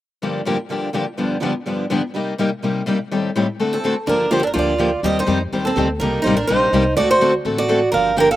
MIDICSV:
0, 0, Header, 1, 5, 480
1, 0, Start_track
1, 0, Key_signature, -2, "minor"
1, 0, Tempo, 240964
1, 450, Time_signature, 4, 2, 24, 8
1, 16659, End_track
2, 0, Start_track
2, 0, Title_t, "Steel-string acoustic guitar"
2, 0, Program_c, 0, 25
2, 7445, Note_on_c, 0, 69, 72
2, 7881, Note_off_c, 0, 69, 0
2, 8152, Note_on_c, 0, 70, 79
2, 8611, Note_off_c, 0, 70, 0
2, 8619, Note_on_c, 0, 72, 74
2, 8811, Note_off_c, 0, 72, 0
2, 8830, Note_on_c, 0, 69, 55
2, 8879, Note_off_c, 0, 69, 0
2, 8903, Note_on_c, 0, 70, 69
2, 8994, Note_off_c, 0, 70, 0
2, 9136, Note_on_c, 0, 74, 78
2, 10062, Note_off_c, 0, 74, 0
2, 10070, Note_on_c, 0, 75, 93
2, 10323, Note_off_c, 0, 75, 0
2, 10352, Note_on_c, 0, 72, 82
2, 10776, Note_off_c, 0, 72, 0
2, 11253, Note_on_c, 0, 69, 71
2, 11704, Note_off_c, 0, 69, 0
2, 11945, Note_on_c, 0, 70, 85
2, 12401, Note_off_c, 0, 70, 0
2, 12424, Note_on_c, 0, 72, 77
2, 12685, Note_on_c, 0, 70, 70
2, 12702, Note_off_c, 0, 72, 0
2, 12896, Note_on_c, 0, 72, 87
2, 12900, Note_off_c, 0, 70, 0
2, 13804, Note_off_c, 0, 72, 0
2, 13876, Note_on_c, 0, 74, 99
2, 14122, Note_off_c, 0, 74, 0
2, 14154, Note_on_c, 0, 72, 82
2, 14597, Note_off_c, 0, 72, 0
2, 15106, Note_on_c, 0, 74, 79
2, 15806, Note_off_c, 0, 74, 0
2, 15813, Note_on_c, 0, 77, 85
2, 16285, Note_off_c, 0, 77, 0
2, 16293, Note_on_c, 0, 79, 90
2, 16543, Note_off_c, 0, 79, 0
2, 16551, Note_on_c, 0, 77, 81
2, 16659, Note_off_c, 0, 77, 0
2, 16659, End_track
3, 0, Start_track
3, 0, Title_t, "Steel-string acoustic guitar"
3, 0, Program_c, 1, 25
3, 7427, Note_on_c, 1, 60, 57
3, 7871, Note_off_c, 1, 60, 0
3, 8108, Note_on_c, 1, 62, 65
3, 8562, Note_off_c, 1, 62, 0
3, 8582, Note_on_c, 1, 65, 67
3, 8758, Note_on_c, 1, 60, 47
3, 8773, Note_off_c, 1, 65, 0
3, 8819, Note_off_c, 1, 60, 0
3, 8827, Note_on_c, 1, 62, 64
3, 8927, Note_off_c, 1, 62, 0
3, 9035, Note_on_c, 1, 65, 67
3, 9951, Note_off_c, 1, 65, 0
3, 10043, Note_on_c, 1, 67, 75
3, 10284, Note_off_c, 1, 67, 0
3, 10340, Note_on_c, 1, 63, 69
3, 10770, Note_off_c, 1, 63, 0
3, 11292, Note_on_c, 1, 60, 58
3, 11725, Note_off_c, 1, 60, 0
3, 11975, Note_on_c, 1, 63, 62
3, 12365, Note_off_c, 1, 63, 0
3, 12389, Note_on_c, 1, 63, 66
3, 12656, Note_off_c, 1, 63, 0
3, 12681, Note_on_c, 1, 62, 62
3, 12898, Note_off_c, 1, 62, 0
3, 12919, Note_on_c, 1, 63, 69
3, 13816, Note_off_c, 1, 63, 0
3, 13889, Note_on_c, 1, 66, 77
3, 14129, Note_off_c, 1, 66, 0
3, 14159, Note_on_c, 1, 66, 67
3, 14599, Note_off_c, 1, 66, 0
3, 15107, Note_on_c, 1, 66, 68
3, 15760, Note_off_c, 1, 66, 0
3, 15770, Note_on_c, 1, 70, 72
3, 16235, Note_off_c, 1, 70, 0
3, 16338, Note_on_c, 1, 70, 76
3, 16545, Note_off_c, 1, 70, 0
3, 16553, Note_on_c, 1, 69, 67
3, 16659, Note_off_c, 1, 69, 0
3, 16659, End_track
4, 0, Start_track
4, 0, Title_t, "Steel-string acoustic guitar"
4, 0, Program_c, 2, 25
4, 438, Note_on_c, 2, 43, 52
4, 442, Note_on_c, 2, 50, 53
4, 451, Note_on_c, 2, 58, 56
4, 458, Note_on_c, 2, 53, 54
4, 458, Note_on_c, 2, 62, 60
4, 464, Note_on_c, 2, 67, 53
4, 795, Note_off_c, 2, 43, 0
4, 797, Note_off_c, 2, 50, 0
4, 802, Note_off_c, 2, 58, 0
4, 805, Note_off_c, 2, 53, 0
4, 805, Note_off_c, 2, 62, 0
4, 808, Note_off_c, 2, 67, 0
4, 904, Note_on_c, 2, 43, 69
4, 921, Note_on_c, 2, 50, 63
4, 924, Note_on_c, 2, 53, 78
4, 933, Note_on_c, 2, 58, 67
4, 933, Note_on_c, 2, 62, 71
4, 936, Note_on_c, 2, 67, 85
4, 1111, Note_off_c, 2, 43, 0
4, 1119, Note_off_c, 2, 50, 0
4, 1121, Note_off_c, 2, 53, 0
4, 1125, Note_off_c, 2, 58, 0
4, 1126, Note_off_c, 2, 62, 0
4, 1127, Note_off_c, 2, 67, 0
4, 1395, Note_on_c, 2, 43, 56
4, 1405, Note_on_c, 2, 50, 54
4, 1407, Note_on_c, 2, 53, 53
4, 1409, Note_on_c, 2, 58, 50
4, 1426, Note_on_c, 2, 62, 53
4, 1432, Note_on_c, 2, 67, 59
4, 1753, Note_off_c, 2, 43, 0
4, 1758, Note_off_c, 2, 50, 0
4, 1759, Note_off_c, 2, 53, 0
4, 1760, Note_off_c, 2, 58, 0
4, 1769, Note_off_c, 2, 62, 0
4, 1772, Note_off_c, 2, 67, 0
4, 1862, Note_on_c, 2, 50, 64
4, 1868, Note_on_c, 2, 43, 66
4, 1880, Note_on_c, 2, 62, 79
4, 1881, Note_on_c, 2, 53, 73
4, 1883, Note_on_c, 2, 58, 74
4, 1890, Note_on_c, 2, 67, 79
4, 2069, Note_off_c, 2, 50, 0
4, 2072, Note_off_c, 2, 43, 0
4, 2078, Note_off_c, 2, 62, 0
4, 2079, Note_off_c, 2, 53, 0
4, 2080, Note_off_c, 2, 58, 0
4, 2084, Note_off_c, 2, 67, 0
4, 2347, Note_on_c, 2, 43, 51
4, 2352, Note_on_c, 2, 50, 54
4, 2353, Note_on_c, 2, 53, 52
4, 2364, Note_on_c, 2, 59, 51
4, 2365, Note_on_c, 2, 62, 60
4, 2369, Note_on_c, 2, 67, 52
4, 2709, Note_off_c, 2, 43, 0
4, 2711, Note_off_c, 2, 50, 0
4, 2712, Note_off_c, 2, 53, 0
4, 2717, Note_off_c, 2, 59, 0
4, 2717, Note_off_c, 2, 62, 0
4, 2719, Note_off_c, 2, 67, 0
4, 2825, Note_on_c, 2, 43, 66
4, 2836, Note_on_c, 2, 50, 75
4, 2839, Note_on_c, 2, 53, 76
4, 2844, Note_on_c, 2, 62, 78
4, 2846, Note_on_c, 2, 59, 78
4, 2853, Note_on_c, 2, 67, 73
4, 3031, Note_off_c, 2, 43, 0
4, 3036, Note_off_c, 2, 50, 0
4, 3037, Note_off_c, 2, 53, 0
4, 3040, Note_off_c, 2, 62, 0
4, 3041, Note_off_c, 2, 59, 0
4, 3044, Note_off_c, 2, 67, 0
4, 3310, Note_on_c, 2, 43, 53
4, 3320, Note_on_c, 2, 50, 52
4, 3328, Note_on_c, 2, 53, 53
4, 3329, Note_on_c, 2, 59, 55
4, 3329, Note_on_c, 2, 62, 56
4, 3344, Note_on_c, 2, 67, 57
4, 3669, Note_off_c, 2, 43, 0
4, 3674, Note_off_c, 2, 50, 0
4, 3679, Note_off_c, 2, 53, 0
4, 3679, Note_off_c, 2, 59, 0
4, 3679, Note_off_c, 2, 62, 0
4, 3687, Note_off_c, 2, 67, 0
4, 3785, Note_on_c, 2, 43, 68
4, 3786, Note_on_c, 2, 50, 70
4, 3796, Note_on_c, 2, 53, 74
4, 3810, Note_on_c, 2, 59, 78
4, 3812, Note_on_c, 2, 62, 81
4, 3818, Note_on_c, 2, 67, 75
4, 3990, Note_off_c, 2, 43, 0
4, 3990, Note_off_c, 2, 50, 0
4, 3995, Note_off_c, 2, 53, 0
4, 4003, Note_off_c, 2, 59, 0
4, 4004, Note_off_c, 2, 62, 0
4, 4006, Note_off_c, 2, 67, 0
4, 4275, Note_on_c, 2, 48, 48
4, 4286, Note_on_c, 2, 55, 51
4, 4299, Note_on_c, 2, 63, 60
4, 4300, Note_on_c, 2, 58, 56
4, 4304, Note_on_c, 2, 67, 59
4, 4631, Note_off_c, 2, 48, 0
4, 4637, Note_off_c, 2, 55, 0
4, 4643, Note_off_c, 2, 63, 0
4, 4644, Note_off_c, 2, 58, 0
4, 4646, Note_off_c, 2, 67, 0
4, 4748, Note_on_c, 2, 48, 73
4, 4764, Note_on_c, 2, 55, 63
4, 4767, Note_on_c, 2, 58, 71
4, 4772, Note_on_c, 2, 63, 66
4, 4782, Note_on_c, 2, 67, 77
4, 4951, Note_off_c, 2, 48, 0
4, 4959, Note_off_c, 2, 55, 0
4, 4960, Note_off_c, 2, 58, 0
4, 4963, Note_off_c, 2, 63, 0
4, 4968, Note_off_c, 2, 67, 0
4, 5237, Note_on_c, 2, 48, 49
4, 5254, Note_on_c, 2, 55, 54
4, 5257, Note_on_c, 2, 58, 59
4, 5259, Note_on_c, 2, 63, 60
4, 5274, Note_on_c, 2, 67, 53
4, 5592, Note_off_c, 2, 48, 0
4, 5601, Note_off_c, 2, 55, 0
4, 5602, Note_off_c, 2, 58, 0
4, 5603, Note_off_c, 2, 63, 0
4, 5610, Note_off_c, 2, 67, 0
4, 5699, Note_on_c, 2, 48, 76
4, 5710, Note_on_c, 2, 58, 76
4, 5717, Note_on_c, 2, 55, 68
4, 5726, Note_on_c, 2, 63, 73
4, 5726, Note_on_c, 2, 67, 78
4, 5906, Note_off_c, 2, 48, 0
4, 5911, Note_off_c, 2, 58, 0
4, 5915, Note_off_c, 2, 55, 0
4, 5919, Note_off_c, 2, 67, 0
4, 5920, Note_off_c, 2, 63, 0
4, 6203, Note_on_c, 2, 51, 47
4, 6204, Note_on_c, 2, 45, 58
4, 6207, Note_on_c, 2, 55, 58
4, 6215, Note_on_c, 2, 67, 59
4, 6216, Note_on_c, 2, 60, 53
4, 6229, Note_on_c, 2, 69, 56
4, 6555, Note_off_c, 2, 45, 0
4, 6555, Note_off_c, 2, 51, 0
4, 6556, Note_off_c, 2, 55, 0
4, 6561, Note_off_c, 2, 60, 0
4, 6561, Note_off_c, 2, 67, 0
4, 6568, Note_off_c, 2, 69, 0
4, 6683, Note_on_c, 2, 45, 72
4, 6688, Note_on_c, 2, 51, 70
4, 6688, Note_on_c, 2, 55, 71
4, 6700, Note_on_c, 2, 60, 72
4, 6704, Note_on_c, 2, 67, 76
4, 6710, Note_on_c, 2, 69, 75
4, 6878, Note_off_c, 2, 45, 0
4, 6880, Note_off_c, 2, 51, 0
4, 6880, Note_off_c, 2, 55, 0
4, 6886, Note_off_c, 2, 60, 0
4, 6888, Note_off_c, 2, 67, 0
4, 6891, Note_off_c, 2, 69, 0
4, 7162, Note_on_c, 2, 57, 55
4, 7169, Note_on_c, 2, 50, 52
4, 7172, Note_on_c, 2, 60, 49
4, 7172, Note_on_c, 2, 66, 59
4, 7175, Note_on_c, 2, 69, 59
4, 7514, Note_off_c, 2, 57, 0
4, 7517, Note_off_c, 2, 50, 0
4, 7519, Note_off_c, 2, 60, 0
4, 7519, Note_off_c, 2, 66, 0
4, 7520, Note_off_c, 2, 69, 0
4, 7645, Note_on_c, 2, 50, 72
4, 7651, Note_on_c, 2, 57, 68
4, 7656, Note_on_c, 2, 60, 70
4, 7666, Note_on_c, 2, 66, 74
4, 7667, Note_on_c, 2, 69, 85
4, 7839, Note_off_c, 2, 50, 0
4, 7842, Note_off_c, 2, 57, 0
4, 7844, Note_off_c, 2, 60, 0
4, 7849, Note_off_c, 2, 66, 0
4, 7849, Note_off_c, 2, 69, 0
4, 8091, Note_on_c, 2, 50, 49
4, 8110, Note_on_c, 2, 53, 52
4, 8116, Note_on_c, 2, 58, 59
4, 8120, Note_on_c, 2, 62, 58
4, 8127, Note_on_c, 2, 67, 60
4, 8458, Note_off_c, 2, 50, 0
4, 8468, Note_off_c, 2, 53, 0
4, 8471, Note_off_c, 2, 58, 0
4, 8473, Note_off_c, 2, 62, 0
4, 8476, Note_off_c, 2, 67, 0
4, 8578, Note_on_c, 2, 50, 71
4, 8587, Note_on_c, 2, 53, 78
4, 8588, Note_on_c, 2, 58, 77
4, 8605, Note_on_c, 2, 62, 84
4, 8614, Note_on_c, 2, 67, 76
4, 8785, Note_off_c, 2, 50, 0
4, 8789, Note_off_c, 2, 53, 0
4, 8790, Note_off_c, 2, 58, 0
4, 8798, Note_off_c, 2, 62, 0
4, 8803, Note_off_c, 2, 67, 0
4, 9048, Note_on_c, 2, 53, 59
4, 9052, Note_on_c, 2, 50, 53
4, 9057, Note_on_c, 2, 58, 64
4, 9064, Note_on_c, 2, 62, 66
4, 9072, Note_on_c, 2, 67, 64
4, 9417, Note_off_c, 2, 53, 0
4, 9419, Note_off_c, 2, 50, 0
4, 9421, Note_off_c, 2, 58, 0
4, 9425, Note_off_c, 2, 62, 0
4, 9429, Note_off_c, 2, 67, 0
4, 9530, Note_on_c, 2, 50, 74
4, 9548, Note_on_c, 2, 53, 71
4, 9548, Note_on_c, 2, 58, 70
4, 9549, Note_on_c, 2, 67, 74
4, 9563, Note_on_c, 2, 62, 80
4, 9741, Note_off_c, 2, 50, 0
4, 9750, Note_off_c, 2, 53, 0
4, 9750, Note_off_c, 2, 58, 0
4, 9751, Note_off_c, 2, 67, 0
4, 9758, Note_off_c, 2, 62, 0
4, 10022, Note_on_c, 2, 51, 56
4, 10033, Note_on_c, 2, 55, 61
4, 10036, Note_on_c, 2, 60, 56
4, 10043, Note_on_c, 2, 67, 63
4, 10047, Note_on_c, 2, 72, 57
4, 10384, Note_off_c, 2, 51, 0
4, 10389, Note_off_c, 2, 55, 0
4, 10391, Note_off_c, 2, 60, 0
4, 10395, Note_off_c, 2, 67, 0
4, 10397, Note_off_c, 2, 72, 0
4, 10485, Note_on_c, 2, 51, 69
4, 10492, Note_on_c, 2, 55, 77
4, 10506, Note_on_c, 2, 60, 80
4, 10506, Note_on_c, 2, 67, 84
4, 10516, Note_on_c, 2, 72, 84
4, 10699, Note_off_c, 2, 51, 0
4, 10702, Note_off_c, 2, 55, 0
4, 10709, Note_off_c, 2, 60, 0
4, 10709, Note_off_c, 2, 67, 0
4, 10714, Note_off_c, 2, 72, 0
4, 11006, Note_on_c, 2, 51, 63
4, 11012, Note_on_c, 2, 55, 51
4, 11019, Note_on_c, 2, 60, 60
4, 11019, Note_on_c, 2, 67, 62
4, 11027, Note_on_c, 2, 72, 63
4, 11356, Note_off_c, 2, 51, 0
4, 11359, Note_off_c, 2, 55, 0
4, 11363, Note_off_c, 2, 60, 0
4, 11363, Note_off_c, 2, 67, 0
4, 11367, Note_off_c, 2, 72, 0
4, 11493, Note_on_c, 2, 51, 71
4, 11493, Note_on_c, 2, 55, 77
4, 11505, Note_on_c, 2, 72, 83
4, 11507, Note_on_c, 2, 67, 77
4, 11510, Note_on_c, 2, 60, 79
4, 11683, Note_off_c, 2, 51, 0
4, 11683, Note_off_c, 2, 55, 0
4, 11689, Note_off_c, 2, 72, 0
4, 11690, Note_off_c, 2, 67, 0
4, 11691, Note_off_c, 2, 60, 0
4, 11982, Note_on_c, 2, 48, 61
4, 11995, Note_on_c, 2, 55, 53
4, 12009, Note_on_c, 2, 58, 64
4, 12015, Note_on_c, 2, 63, 60
4, 12021, Note_on_c, 2, 67, 64
4, 12324, Note_off_c, 2, 48, 0
4, 12331, Note_off_c, 2, 55, 0
4, 12338, Note_off_c, 2, 58, 0
4, 12341, Note_off_c, 2, 63, 0
4, 12344, Note_off_c, 2, 67, 0
4, 12470, Note_on_c, 2, 48, 82
4, 12480, Note_on_c, 2, 58, 80
4, 12481, Note_on_c, 2, 55, 75
4, 12491, Note_on_c, 2, 67, 88
4, 12494, Note_on_c, 2, 63, 75
4, 12652, Note_off_c, 2, 48, 0
4, 12657, Note_off_c, 2, 58, 0
4, 12658, Note_off_c, 2, 55, 0
4, 12662, Note_off_c, 2, 67, 0
4, 12664, Note_off_c, 2, 63, 0
4, 12938, Note_on_c, 2, 48, 56
4, 12941, Note_on_c, 2, 55, 53
4, 12956, Note_on_c, 2, 58, 58
4, 12959, Note_on_c, 2, 63, 55
4, 12969, Note_on_c, 2, 67, 62
4, 13283, Note_off_c, 2, 48, 0
4, 13284, Note_off_c, 2, 55, 0
4, 13292, Note_off_c, 2, 58, 0
4, 13294, Note_off_c, 2, 63, 0
4, 13298, Note_off_c, 2, 67, 0
4, 13408, Note_on_c, 2, 48, 73
4, 13415, Note_on_c, 2, 55, 75
4, 13419, Note_on_c, 2, 58, 79
4, 13421, Note_on_c, 2, 63, 84
4, 13428, Note_on_c, 2, 67, 88
4, 13601, Note_off_c, 2, 48, 0
4, 13605, Note_off_c, 2, 55, 0
4, 13607, Note_off_c, 2, 58, 0
4, 13608, Note_off_c, 2, 63, 0
4, 13612, Note_off_c, 2, 67, 0
4, 13911, Note_on_c, 2, 50, 55
4, 13914, Note_on_c, 2, 57, 56
4, 13922, Note_on_c, 2, 60, 59
4, 13931, Note_on_c, 2, 69, 56
4, 13934, Note_on_c, 2, 66, 64
4, 14250, Note_off_c, 2, 50, 0
4, 14252, Note_off_c, 2, 57, 0
4, 14256, Note_off_c, 2, 60, 0
4, 14260, Note_off_c, 2, 69, 0
4, 14262, Note_off_c, 2, 66, 0
4, 14361, Note_on_c, 2, 57, 83
4, 14362, Note_on_c, 2, 50, 75
4, 14366, Note_on_c, 2, 66, 86
4, 14374, Note_on_c, 2, 60, 83
4, 14384, Note_on_c, 2, 69, 83
4, 14558, Note_off_c, 2, 57, 0
4, 14559, Note_off_c, 2, 50, 0
4, 14561, Note_off_c, 2, 66, 0
4, 14565, Note_off_c, 2, 60, 0
4, 14570, Note_off_c, 2, 69, 0
4, 14835, Note_on_c, 2, 50, 59
4, 14843, Note_on_c, 2, 57, 55
4, 14847, Note_on_c, 2, 66, 57
4, 14848, Note_on_c, 2, 60, 60
4, 14853, Note_on_c, 2, 69, 63
4, 15193, Note_off_c, 2, 50, 0
4, 15197, Note_off_c, 2, 57, 0
4, 15198, Note_off_c, 2, 66, 0
4, 15199, Note_off_c, 2, 60, 0
4, 15202, Note_off_c, 2, 69, 0
4, 15303, Note_on_c, 2, 50, 67
4, 15314, Note_on_c, 2, 60, 80
4, 15317, Note_on_c, 2, 57, 73
4, 15322, Note_on_c, 2, 66, 74
4, 15324, Note_on_c, 2, 69, 82
4, 15510, Note_off_c, 2, 50, 0
4, 15515, Note_off_c, 2, 60, 0
4, 15517, Note_off_c, 2, 57, 0
4, 15519, Note_off_c, 2, 66, 0
4, 15521, Note_off_c, 2, 69, 0
4, 15778, Note_on_c, 2, 50, 57
4, 15780, Note_on_c, 2, 53, 56
4, 15793, Note_on_c, 2, 62, 64
4, 15798, Note_on_c, 2, 58, 53
4, 15805, Note_on_c, 2, 67, 63
4, 16145, Note_off_c, 2, 50, 0
4, 16146, Note_off_c, 2, 53, 0
4, 16152, Note_off_c, 2, 62, 0
4, 16155, Note_off_c, 2, 58, 0
4, 16158, Note_off_c, 2, 67, 0
4, 16263, Note_on_c, 2, 50, 72
4, 16273, Note_on_c, 2, 53, 77
4, 16282, Note_on_c, 2, 67, 86
4, 16288, Note_on_c, 2, 58, 83
4, 16295, Note_on_c, 2, 62, 75
4, 16470, Note_off_c, 2, 50, 0
4, 16475, Note_off_c, 2, 53, 0
4, 16480, Note_off_c, 2, 67, 0
4, 16483, Note_off_c, 2, 58, 0
4, 16486, Note_off_c, 2, 62, 0
4, 16659, End_track
5, 0, Start_track
5, 0, Title_t, "Upright bass"
5, 0, Program_c, 3, 32
5, 8122, Note_on_c, 3, 31, 74
5, 8891, Note_off_c, 3, 31, 0
5, 9066, Note_on_c, 3, 38, 65
5, 9841, Note_off_c, 3, 38, 0
5, 10022, Note_on_c, 3, 39, 78
5, 10415, Note_off_c, 3, 39, 0
5, 10508, Note_on_c, 3, 41, 75
5, 10923, Note_off_c, 3, 41, 0
5, 11004, Note_on_c, 3, 39, 68
5, 11412, Note_off_c, 3, 39, 0
5, 11485, Note_on_c, 3, 38, 76
5, 11893, Note_off_c, 3, 38, 0
5, 11956, Note_on_c, 3, 36, 82
5, 12344, Note_off_c, 3, 36, 0
5, 12439, Note_on_c, 3, 33, 78
5, 12850, Note_off_c, 3, 33, 0
5, 12924, Note_on_c, 3, 34, 70
5, 13333, Note_off_c, 3, 34, 0
5, 13392, Note_on_c, 3, 36, 79
5, 13806, Note_off_c, 3, 36, 0
5, 13866, Note_on_c, 3, 38, 82
5, 14643, Note_off_c, 3, 38, 0
5, 14844, Note_on_c, 3, 33, 66
5, 15614, Note_off_c, 3, 33, 0
5, 15790, Note_on_c, 3, 31, 82
5, 16567, Note_off_c, 3, 31, 0
5, 16659, End_track
0, 0, End_of_file